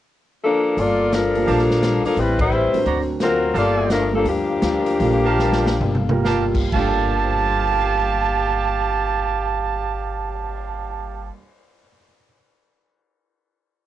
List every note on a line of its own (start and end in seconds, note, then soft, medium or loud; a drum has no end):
0.44 0.76 F3 medium
0.44 0.76 A#3 medium
0.44 0.76 D4 medium
0.44 0.76 A4 medium
0.77 1.43 G1 medium
0.77 1.02 G3 soft
0.77 1.13 A#3 medium
0.77 1.02 A#3 soft
0.77 1.13 F4 medium
0.77 1.13 A4 medium
0.77 1.13 D5 medium
0.77 open hi-hat soft
0.81 1.03 F4 soft
0.81 1.03 A4 soft
1.12 1.48 F3 medium
1.12 1.36 G3 medium
1.12 1.37 A#3 soft
1.12 1.48 D4 medium
1.12 1.37 F4 medium
1.12 1.48 A4 medium
1.12 1.37 A4 medium
1.12 1.48 A#4 medium
1.12 snare medium
1.12 closed hi-hat soft
1.35 1.80 G3 soft
1.35 1.80 A#3 soft
1.35 1.80 F4 soft
1.35 1.81 A4 soft
1.35 open hi-hat soft
1.46 2.00 A#1 medium
1.46 2.05 F3 medium
1.46 1.71 G3 soft
1.46 1.72 A#3 soft
1.46 2.05 D4 medium
1.46 1.72 F4 soft
1.46 1.61 G4 medium
1.46 2.05 A4 medium
1.46 1.62 A#4 medium
1.46 1.62 F5 medium
1.46 1.62 A5 medium
1.46 open hi-hat soft
1.50 2.05 A#3 medium
1.50 1.72 A4 soft
1.59 snare soft
1.71 snare soft
1.83 2.06 G3 medium
1.83 2.07 A#3 medium
1.83 2.07 F4 medium
1.83 2.07 A4 medium
1.83 snare medium
1.83 closed hi-hat soft
2.05 2.17 F3 medium
2.05 2.17 A#3 medium
2.05 2.17 D4 medium
2.05 2.17 A4 medium
2.05 muted upright bass stroke soft
2.05 open hi-hat soft
2.17 2.69 A1 medium
2.17 2.40 G3 medium
2.17 2.40 A3 soft
2.17 2.41 C4 soft
2.17 2.40 C4 medium
2.17 2.40 E4 medium
2.17 2.41 G4 soft
2.17 2.40 B4 medium
2.17 2.42 B4 soft
2.17 open hi-hat soft
2.39 2.84 G3 medium
2.39 2.84 E4 medium
2.39 2.84 B4 medium
2.39 3.06 C5 medium
2.39 kick medium
2.39 ride medium
2.52 2.75 A3 medium
2.52 2.75 C4 medium
2.52 2.76 G4 medium
2.52 2.76 B4 medium
2.73 3.18 F#3 medium
2.73 3.19 C4 soft
2.73 3.19 D4 soft
2.73 3.19 A#4 medium
2.73 muted upright bass stroke soft
2.73 open hi-hat soft
2.85 3.52 D2 medium
2.85 3.10 D3 soft
2.85 3.10 A#3 soft
2.85 3.11 C4 soft
2.85 3.00 F#4 medium
2.85 3.00 C5 medium
2.85 3.00 D5 medium
2.85 3.00 A#5 medium
2.85 open hi-hat soft
2.89 3.11 F#4 medium
3.20 3.44 D3 medium
3.20 3.55 F#3 medium
3.20 3.44 A#3 medium
3.20 3.45 C4 medium
3.20 3.54 C4 medium
3.20 3.54 F4 medium
3.20 3.45 F#4 medium
3.20 3.54 A#4 medium
3.20 snare medium
3.20 closed hi-hat soft
3.54 4.22 G1 medium
3.54 3.79 G3 soft
3.54 3.80 A#3 soft
3.54 3.80 F4 soft
3.54 4.07 G4 medium
3.54 4.07 A4 medium
3.54 4.07 F5 medium
3.54 4.07 A5 medium
3.54 open hi-hat soft
3.58 3.89 A#3 medium
3.58 3.89 F4 medium
3.58 3.89 A4 medium
3.58 3.81 A4 soft
3.58 3.89 D5 medium
3.90 4.12 F3 medium
3.90 4.15 G3 medium
3.90 4.12 A3 medium
3.90 4.15 A#3 medium
3.90 4.12 D4 medium
3.90 4.15 F4 medium
3.90 4.15 A4 medium
3.90 4.12 A#4 medium
3.90 snare medium
3.90 closed hi-hat soft
4.12 4.24 G3 medium
4.12 4.24 A#3 soft
4.12 4.25 F4 soft
4.12 4.25 A4 medium
4.12 4.27 A4 medium
4.16 4.27 F3 medium
4.16 4.28 A#3 medium
4.16 4.28 D4 medium
4.24 4.59 D2 medium
4.24 4.50 G3 soft
4.24 4.51 A#3 soft
4.24 4.51 F4 soft
4.24 4.51 A4 soft
4.24 open hi-hat soft
4.29 6.22 F3 medium
4.29 6.22 A#3 medium
4.29 6.22 D4 medium
4.29 6.22 G4 medium
4.62 4.97 D2 medium
4.62 4.88 G3 medium
4.62 4.88 A#3 medium
4.62 4.88 F4 medium
4.62 4.88 A4 medium
4.62 snare medium
4.62 closed hi-hat soft
4.86 open hi-hat soft
5.00 5.77 A#1 medium
5.00 5.23 G3 soft
5.00 5.27 G3 soft
5.00 5.23 A#3 soft
5.00 5.27 A#3 soft
5.00 5.23 F4 soft
5.00 5.28 F4 soft
5.00 5.24 A4 medium
5.00 open hi-hat soft
5.05 5.28 A4 medium
5.24 5.77 G4 medium
5.24 5.77 A#4 medium
5.24 5.77 F5 medium
5.24 5.77 A5 medium
5.39 5.67 G3 medium
5.39 5.68 A#3 medium
5.39 5.68 F4 medium
5.39 5.68 A4 medium
5.39 snare soft
5.52 snare soft
5.66 snare medium
5.80 6.68 G1 medium
5.80 6.11 G3 soft
5.80 6.11 A#3 soft
5.80 6.12 F4 medium
5.80 mid tom medium
5.85 6.12 A4 soft
5.95 mid tom medium
6.09 6.69 G3 medium
6.09 6.69 A#3 medium
6.09 6.70 F4 medium
6.09 6.70 A#4 medium
6.09 mid tom medium
6.24 6.57 G3 medium
6.24 6.57 A#3 medium
6.24 6.58 F4 medium
6.24 6.44 G4 medium
6.24 6.58 A4 medium
6.24 6.44 A#4 medium
6.24 6.44 F5 medium
6.24 6.45 A5 medium
6.24 snare soft
6.55 kick medium
6.55 crash medium
6.72 11.28 G1 medium
6.72 11.34 G2 medium
6.72 11.34 G3 medium
6.72 11.35 A#3 medium
6.72 11.32 G4 medium
6.72 11.32 F5 medium
6.72 11.32 A5 loud
6.72 kick soft
6.72 crash medium
6.76 11.36 A#3 medium
6.76 11.36 F4 soft
6.76 11.37 F4 medium
6.76 11.36 A4 medium
6.76 11.39 A4 medium
7.03 cymbal swell soft
7.24 11.80 C5 soft
7.31 11.87 F5 soft
7.40 11.96 A5 soft
7.49 12.05 C6 soft
7.59 12.15 F6 soft
7.69 12.25 A6 soft
7.81 12.37 C7 soft